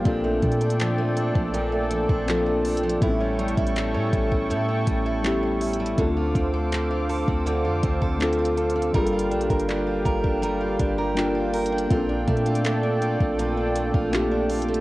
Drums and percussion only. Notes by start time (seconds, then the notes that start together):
0.05 kick, closed hi-hat
0.43 kick, closed hi-hat
0.52 closed hi-hat
0.61 closed hi-hat
0.70 closed hi-hat
0.80 clap, closed hi-hat
1.17 closed hi-hat
1.35 kick
1.54 closed hi-hat
1.91 closed hi-hat
2.09 kick
2.28 clap, closed hi-hat
2.65 closed hi-hat, open hi-hat
2.77 closed hi-hat
2.89 closed hi-hat
3.02 kick, closed hi-hat
3.39 closed hi-hat
3.48 closed hi-hat
3.57 kick, closed hi-hat
3.67 closed hi-hat
3.76 clap, closed hi-hat
4.13 kick, closed hi-hat
4.32 kick
4.51 closed hi-hat
4.87 kick, closed hi-hat
5.24 clap, closed hi-hat
5.61 closed hi-hat, open hi-hat
5.73 closed hi-hat
5.86 closed hi-hat
5.98 kick, closed hi-hat
6.35 kick, closed hi-hat
6.72 clap, closed hi-hat
7.09 open hi-hat
7.28 kick
7.47 closed hi-hat
7.83 kick, closed hi-hat
8.02 kick
8.20 clap, closed hi-hat
8.33 closed hi-hat
8.45 closed hi-hat
8.57 closed hi-hat
8.70 closed hi-hat
8.82 closed hi-hat
8.94 kick, closed hi-hat
9.07 closed hi-hat
9.19 closed hi-hat
9.31 closed hi-hat
9.41 closed hi-hat
9.50 kick, closed hi-hat
9.59 closed hi-hat
9.69 clap, closed hi-hat
10.05 kick, closed hi-hat
10.24 kick
10.43 closed hi-hat
10.79 kick, closed hi-hat
11.17 clap, closed hi-hat
11.54 closed hi-hat, open hi-hat
11.66 closed hi-hat
11.78 closed hi-hat
11.90 kick, closed hi-hat
12.28 kick, closed hi-hat
12.37 closed hi-hat
12.46 closed hi-hat
12.55 closed hi-hat
12.65 clap, closed hi-hat
13.02 closed hi-hat
13.20 kick
13.39 closed hi-hat
13.76 closed hi-hat
13.94 kick
14.13 clap, closed hi-hat
14.50 closed hi-hat, open hi-hat
14.62 closed hi-hat
14.74 closed hi-hat